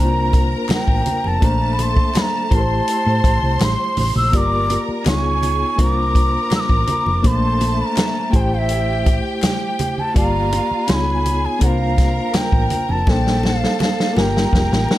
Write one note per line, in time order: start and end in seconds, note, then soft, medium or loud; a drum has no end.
0.00 0.54 C2 loud
0.00 1.38 A#3 medium
0.00 1.39 D4 medium
0.00 1.39 A#4 medium
0.00 1.41 C5 medium
0.00 1.39 A#5 medium
0.00 0.44 A#5 loud
0.05 1.43 F4 medium
0.33 kick loud
0.33 closed hi-hat medium
0.33 muted conga soft
0.69 muted fingered electric bass stroke soft
0.69 snare loud
0.69 clap medium
0.69 closed hi-hat medium
0.69 high conga medium
0.73 1.29 G5 loud
0.88 1.02 A1 medium
0.88 kick medium
1.06 closed hi-hat medium
1.06 high conga medium
1.24 1.39 F1 medium
1.24 1.47 A5 medium
1.24 high conga medium
1.41 1.99 A#1 loud
1.41 2.47 A3 medium
1.41 2.49 A3 medium
1.41 2.50 A#3 medium
1.41 2.51 D4 medium
1.41 2.52 C5 medium
1.41 2.49 A5 medium
1.41 kick loud
1.41 closed hi-hat medium
1.41 muted conga medium
1.45 1.75 A#5 loud
1.73 1.84 B5 medium
1.79 2.20 C6 medium
1.79 closed hi-hat medium
1.79 muted conga soft
1.97 kick loud
2.14 2.23 B5 loud
2.14 snare loud
2.14 clap medium
2.14 closed hi-hat medium
2.14 high conga medium
2.21 2.56 A#5 loud
2.49 2.80 A1 medium
2.49 4.28 A3 medium
2.49 4.29 E4 medium
2.49 4.30 G4 medium
2.49 4.29 C5 medium
2.49 4.30 C6 medium
2.49 kick loud
2.49 closed hi-hat medium
2.49 muted conga soft
2.54 2.59 A#4 medium
2.54 3.66 A5 loud
2.60 4.34 C5 medium
2.88 closed hi-hat medium
3.06 3.20 A2 medium
3.24 3.38 A1 medium
3.24 kick loud
3.24 closed hi-hat medium
3.24 muted conga soft
3.43 3.57 C2 medium
3.60 3.75 A1 medium
3.60 4.17 C6 loud
3.60 snare loud
3.60 clap medium
3.60 closed hi-hat medium
3.60 high conga medium
3.97 4.11 A1 medium
3.97 open hi-hat medium
3.97 high conga medium
4.16 4.29 A#1 medium
4.16 4.38 E6 loud
4.16 high conga medium
4.32 4.76 G1 medium
4.32 5.05 A#3 medium
4.32 5.05 F4 medium
4.32 5.06 G4 medium
4.32 5.05 A#4 medium
4.32 5.07 D5 medium
4.32 5.05 A#5 medium
4.32 kick loud
4.32 closed hi-hat medium
4.32 muted conga medium
4.37 4.81 D6 loud
4.70 closed hi-hat medium
4.70 muted conga medium
4.89 muted fingered electric bass stroke soft
5.04 5.63 C#2 loud
5.04 5.78 B3 medium
5.04 5.78 D#4 medium
5.04 5.78 F4 medium
5.04 5.77 G#4 medium
5.04 5.79 C#5 medium
5.04 5.77 G#5 medium
5.04 5.84 C#6 loud
5.04 snare loud
5.04 clap medium
5.04 closed hi-hat medium
5.04 high conga medium
5.43 closed hi-hat medium
5.43 muted conga soft
5.76 6.36 C2 loud
5.76 7.20 A#3 medium
5.76 7.21 D4 medium
5.76 7.22 F4 medium
5.76 7.21 A#4 medium
5.76 7.21 A#5 medium
5.76 kick medium
5.76 closed hi-hat loud
5.81 7.23 C5 medium
5.81 6.53 D6 loud
6.15 kick medium
6.15 closed hi-hat medium
6.51 muted fingered electric bass stroke soft
6.51 snare loud
6.51 clap medium
6.51 closed hi-hat medium
6.51 high conga medium
6.55 6.61 E6 loud
6.60 7.28 D6 loud
6.70 6.84 A1 medium
6.70 kick loud
6.87 closed hi-hat medium
6.87 high conga medium
7.06 7.20 F1 medium
7.06 high conga soft
7.22 7.81 A#1 loud
7.22 8.29 A3 medium
7.22 8.31 A3 medium
7.22 8.32 A#3 medium
7.22 8.33 D4 medium
7.22 8.34 C5 medium
7.22 8.31 A5 medium
7.22 kick loud
7.22 closed hi-hat medium
7.22 muted conga medium
7.27 7.83 C6 loud
7.61 closed hi-hat medium
7.61 muted conga medium
7.82 7.87 B5 medium
7.86 8.37 A#5 loud
7.96 snare loud
7.96 clap medium
7.96 closed hi-hat medium
7.96 high conga medium
8.30 9.21 A1 loud
8.30 10.10 A3 medium
8.30 10.11 E4 medium
8.30 10.12 G4 medium
8.30 10.12 G5 medium
8.30 kick loud
8.30 closed hi-hat medium
8.30 muted conga soft
8.36 10.13 C5 medium
8.36 8.42 G#5 medium
8.41 8.56 G5 medium
8.54 8.60 F5 medium
8.59 9.17 E5 loud
8.69 closed hi-hat medium
9.06 kick loud
9.06 closed hi-hat medium
9.06 muted conga soft
9.42 snare loud
9.42 clap medium
9.42 closed hi-hat medium
9.42 high conga medium
9.47 10.01 G5 medium
9.79 closed hi-hat medium
9.79 high conga medium
9.98 10.17 A5 medium
9.98 high conga medium
10.14 10.59 G1 loud
10.14 10.88 A#3 medium
10.14 10.88 F4 medium
10.14 10.87 F4 medium
10.14 10.88 G4 medium
10.14 10.89 D5 medium
10.14 10.87 F5 medium
10.14 10.92 A#5 loud
10.14 kick loud
10.14 closed hi-hat medium
10.14 muted conga medium
10.52 closed hi-hat medium
10.52 muted conga medium
10.71 muted fingered electric bass stroke soft
10.87 11.46 C#2 loud
10.87 11.61 B3 medium
10.87 11.61 D#4 medium
10.87 11.61 F4 medium
10.87 11.60 G#4 medium
10.87 11.62 C#5 medium
10.87 11.60 G#5 medium
10.87 10.96 C6 medium
10.87 snare loud
10.87 clap medium
10.87 closed hi-hat medium
10.87 high conga medium
10.95 11.47 B5 loud
11.26 closed hi-hat medium
11.26 muted conga medium
11.46 11.62 G#5 medium
11.59 12.19 C2 loud
11.59 13.03 A#3 medium
11.59 13.03 D4 medium
11.59 13.04 F4 medium
11.59 13.05 A#4 medium
11.59 11.68 F#5 medium
11.59 13.05 A#5 medium
11.59 kick medium
11.59 closed hi-hat loud
11.64 13.05 C5 medium
11.64 12.38 F5 medium
11.98 kick loud
11.98 snare soft
11.98 closed hi-hat medium
12.34 12.92 G5 medium
12.34 muted fingered electric bass stroke soft
12.34 snare loud
12.34 clap medium
12.34 closed hi-hat medium
12.34 high conga medium
12.52 12.67 A1 medium
12.52 kick loud
12.70 closed hi-hat medium
12.70 high conga medium
12.89 13.03 F1 medium
12.89 13.12 A5 medium
12.89 high conga medium
13.06 13.64 A#1 loud
13.06 14.12 A#3 medium
13.06 14.16 D4 medium
13.06 14.15 A4 medium
13.06 14.17 A4 medium
13.06 14.17 C5 medium
13.06 13.45 G5 medium
13.06 14.15 A5 medium
13.06 kick loud
13.06 snare medium
13.06 muted conga medium
13.27 snare medium
13.43 13.79 F5 medium
13.43 snare medium
13.43 muted conga medium
13.64 snare medium
13.80 14.19 F5 medium
13.80 snare medium
13.80 clap medium
13.80 high conga medium
14.00 snare medium
14.13 14.45 G1 medium
14.13 14.98 A#3 medium
14.13 14.98 F4 medium
14.13 14.98 G4 medium
14.13 14.98 A#4 medium
14.13 14.98 A#5 medium
14.13 muted conga soft
14.18 14.98 A#4 medium
14.18 14.23 G#5 medium
14.18 snare medium
14.22 14.98 G5 medium
14.37 snare medium
14.53 14.67 F1 loud
14.53 kick medium
14.53 snare medium
14.72 14.86 A1 medium
14.72 snare medium
14.89 snare medium
14.89 muted conga soft